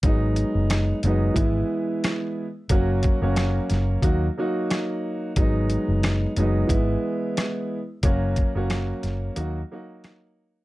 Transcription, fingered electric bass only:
X:1
M:4/4
L:1/16
Q:"Swing 16ths" 1/4=90
K:G#m
V:1 name="Fingered electric bass" clef=bass
G,,,3 F,,,3 F,,,2 G,,,2 z6 | F,,,3 F,,,3 F,,,2 D,,2 z6 | G,,,3 F,,,3 F,,,2 G,,,2 z6 | F,,,3 F,,,3 F,,,2 D,,2 z6 |]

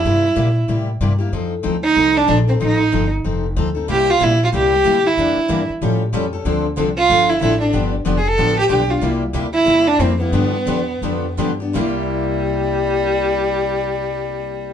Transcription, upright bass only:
X:1
M:4/4
L:1/8
Q:"Swing" 1/4=187
K:Cmix
V:1 name="Upright bass" clef=bass
G,,2 B,,2 A,,2 G,,2 | F,,2 D,,2 C,,2 B,,,2 | A,,,2 G,,,2 F,,,2 D,,2 | C,,2 B,,,2 C,,2 D,,2 |
E,, z G,, z A,,2 ^E,,2 | D,,2 C,,2 G,,,2 A,,,2 | G,,,2 F,,,2 A,,,2 =B,,,2 | C,,2 D,,2 E,,2 F,,2 |
G,,2 E,,2 F,,2 G,,2 | C,,8- | C,,8 |]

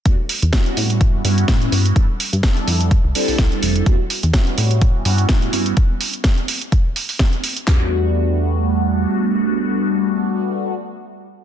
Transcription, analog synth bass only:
X:1
M:4/4
L:1/16
Q:"Swing 16ths" 1/4=126
K:Edor
V:1 name="Analog synth bass" clef=bass
E,, z2 E,, z2 A,,3 G,, G,,2 A,,2 G,,2 | G,, z2 G,, z2 =F,,3 =C,, z C,, C,, z =F,,,2 | E,, z2 E,, z2 A,,3 G,, G,,2 A,,2 G,,2 | z16 |
E,,12 z4 | z16 |]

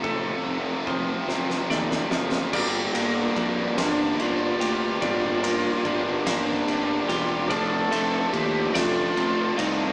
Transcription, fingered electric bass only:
X:1
M:6/8
L:1/8
Q:3/8=48
K:Gm
V:1 name="Fingered electric bass" clef=bass
F,,, F,,, F,,, F,,, E,, ^F,,, | G,,, G,,, F,, G,,, G,,, D,, | G,,,2 G,,, G,,, G,,, =E,,, | F,,, F,,, E,, F,,, F,,, C,, |]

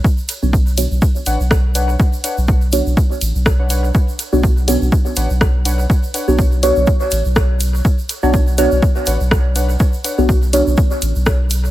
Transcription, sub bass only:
X:1
M:4/4
L:1/16
Q:"Swing 16ths" 1/4=123
K:Bm
V:1 name="Sub bass" clef=bass
z3 B,,,4 B,,, z2 A,,, B,,,4- B,,, | z3 B,,,4 B,,, z2 A,,, B,,,4- B,,, | z3 B,,,4 B,,, z2 A,,, B,,,4- B,,, | z3 B,,,4 B,,, z2 A,,, B,,,4- B,,, |
z3 B,,,4 B,,, z2 A,,, B,,,4- B,,, | z3 B,,,4 B,,, z2 A,,, B,,,4- B,,, |]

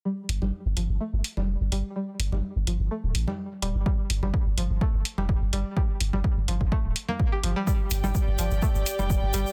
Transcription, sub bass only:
X:1
M:4/4
L:1/16
Q:"Swing 16ths" 1/4=126
K:Cdor
V:1 name="Sub bass" clef=bass
z2 G,,, G,,, z G,,, G,,, G,,, z G,,, z F,,,2 G,,, G,,, z | z2 G,,, G,,, z G,,, G,,, G,,, z D,,, A,,, z3 D,,, G,,, | z2 G,,, G,,, z G,,, G,,, G,,, z G,,, z F,,,2 G,,, G,,, z | z2 G,,, G,,, z G,,, G,,, G,,, z D,,, z4 G,,, z |
z2 G,,, G,,, z G,,, G,,, G,,, z G,,, z F,,,2 G,,, G,,, z |]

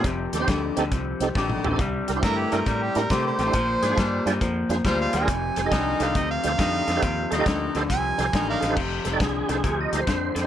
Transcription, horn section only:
X:1
M:4/4
L:1/8
Q:"Swing" 1/4=138
K:Fmix
V:1 name="Horn section"
z [G,A,EG]2 z3 [G,A,EG]2 | z2 [=E,B,D=E]2 z2 [G,B,DG]2 | z [D,_A,CD]2 z3 [F,A,CF]2 | z2 [E,G,A,E]2 z2 [E,G,A,E]2 |
z [E,G,A,E]2 z3 [E,G,A,E]2 | z8 |]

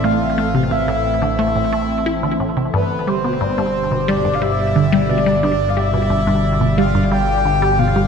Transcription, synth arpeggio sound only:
X:1
M:4/4
L:1/16
Q:1/4=89
K:Gmix
V:1 name="Synth arpeggio sound" clef=bass
A,, z A, C, A,, A,, z D, A, A,, A, z E D, A,, C, | G,, z G, B,, G,, G,, z B,, G, G,, G, z D, G, B,, G, | G,, z G, B,, G,, G,, z B,, G, G,, G, z D, G, B,, G, |]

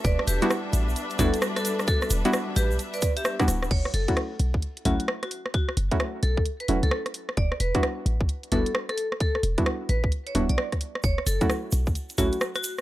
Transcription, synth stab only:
X:1
M:4/4
L:1/16
Q:"Swing 16ths" 1/4=131
K:F#phr
V:1 name="Synth stab"
z3 [G,B,DEF] z6 [G,B,DEF] z4 z | z3 [G,B,DEF] z8 z [G,B,DEF] z2 | z3 [F,A,CEF] z6 [F,A,CEF] z4 z | z3 [F,A,CEF] z6 [F,A,CEF] z4 z |
z3 [G,B,DEF] z6 [G,B,DEF] z4 z | z3 [G,B,DEF] z6 [G,B,DEF] z4 z | z3 [F,A,CEF] z6 [F,A,CEF] z4 z |]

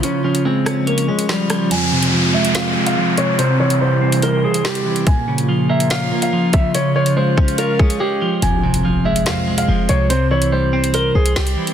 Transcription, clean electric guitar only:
X:1
M:4/4
L:1/8
Q:1/4=143
K:Fm
V:1 name="Clean electric guitar" clef=bass
D, F, A, D d D F, F, | F,, C, F, A, C A, F, C, | C, =E, G, C c C G, E, | B,, D, F, B, D B, F, D, |
D, F, A, D d D A, F, | F,, C, F, A, C A, F, C, | C, =E, G, C c C G, E, |]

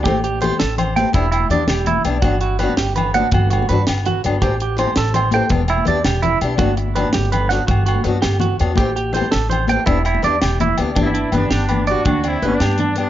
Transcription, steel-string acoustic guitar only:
X:1
M:12/8
L:1/8
Q:3/8=110
K:G
V:1 name="Steel-string acoustic guitar"
[E,A,CG] z [E,A,CG] z2 [E,A,CG] [B,DG] z [B,DG] z2 [B,DG] | [F,B,DF] z [F,B,DF] z2 [F,B,DF] z2 [F,DF] z2 [F,B,D] | [E,A,CG] z [E,A,CG] z2 [E,A,CG] [B,DG] z [B,DG] z2 [B,DG] | [F,B,DF] z [F,B,DF] z2 [F,B,DF] z2 [F,B,DF] z2 [F,B,DF] |
[E,A,CG] z [E,A,CG] z2 [E,A,CG] [B,DG] z [B,DG] z2 [B,DG] | [B,DG] z [B,DG] z2 [B,DG] z2 [B,DG] z2 [B,DG] |]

